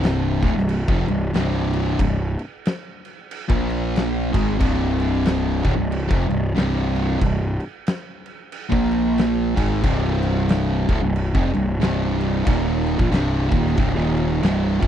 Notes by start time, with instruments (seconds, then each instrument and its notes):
Already playing: picked electric bass C1, distorted electric guitar C2 G2 C3
0.04 snare, crash
0.42 picked electric bass D1, distorted electric guitar D2 A2, kick, crash
0.54 picked electric bass C1, distorted electric guitar C2 G2, snare
0.69 crash
0.88 picked electric bass F1, distorted electric guitar F2 C3, kick
1.07 picked electric bass C1, distorted electric guitar C2 G2, crash
1.33 picked electric bass C1, distorted electric guitar C2 G2 C3, snare, crash
1.73 crash
1.99 picked electric bass C1, distorted electric guitar C2 G2, kick, crash
2.39 crash
2.65 snare, crash
3.05 crash
3.31 crash
3.48 picked electric bass A#1, distorted electric guitar A#2 F3 A#3, kick
3.70 crash
3.96 snare, crash
4.32 picked electric bass G#1, distorted electric guitar G#2 D#3 G#3, kick, crash
4.58 picked electric bass C1, distorted electric guitar C2 G2 C3, kick, crash
5.00 crash
5.25 snare, crash
5.62 picked electric bass D1, distorted electric guitar D2 A2, kick, crash
5.76 picked electric bass C1, distorted electric guitar C2 G2
5.92 crash
6.08 picked electric bass F1, distorted electric guitar F2 C3, kick
6.28 picked electric bass C1, distorted electric guitar C2 G2, crash
6.55 picked electric bass C1, distorted electric guitar C2 G2 C3, snare, crash
6.96 crash
7.19 picked electric bass C1, distorted electric guitar C2 G2, kick, crash
7.60 crash
7.87 snare, crash
8.26 crash
8.52 crash
8.69 picked electric bass A#1, distorted electric guitar A#2 F3 A#3, kick
8.92 crash
9.18 snare, crash
9.56 picked electric bass G#1, distorted electric guitar G#2 D#3 G#3, kick, crash
9.83 picked electric bass C1, distorted electric guitar C2 G2 C3, kick, crash
10.23 crash
10.49 snare, crash
10.88 picked electric bass D1, distorted electric guitar D2 A2, kick, crash
11.02 picked electric bass C1, distorted electric guitar C2 G2
11.16 crash
11.34 picked electric bass F1, distorted electric guitar F2 C3, kick
11.54 picked electric bass C1, distorted electric guitar C2 G2, crash
11.80 picked electric bass C1, distorted electric guitar C2 G2 C3, snare, crash
12.21 crash
12.45 picked electric bass D#1, distorted electric guitar D#2 A#2 D#3, kick, crash
12.87 crash
12.97 picked electric bass A#1, distorted electric guitar A#2 F3, kick
13.11 picked electric bass C1, distorted electric guitar C2 G2 C3, snare, crash
13.49 picked electric bass D#1, distorted electric guitar D#2 A#2 D#3, kick, crash
13.66 snare
13.76 picked electric bass C1, distorted electric guitar C2 G2, kick, crash
13.95 picked electric bass D#1, distorted electric guitar D#2 A#2 D#3
14.17 crash
14.41 picked electric bass C1, distorted electric guitar C2 G2 C3, snare, crash
14.80 picked electric bass F1, distorted electric guitar F2 C3 F3, kick, crash